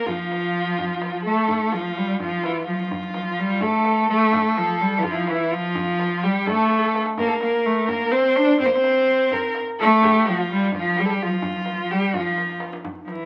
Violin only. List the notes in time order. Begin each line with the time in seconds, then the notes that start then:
0.06 F4
1.24 A4
1.72 F4
2.20 F4
2.67 F4
3.62 A4
4.10 A4
5.03 F4
5.10 E4 F4
5.27 E4
5.51 F4
6.23 G4
6.46 A4
6.77 A4
7.19 A#4
7.27 A4
7.33 A#4
7.89 A#4
8.11 C5
8.61 C5
8.73 C5
9.32 A#4
9.79 A4
10.04 G4
10.25 F4
10.74 F4
10.98 G4
11.04 A4
11.10 G4
11.22 F4
11.91 G4
12.16 F4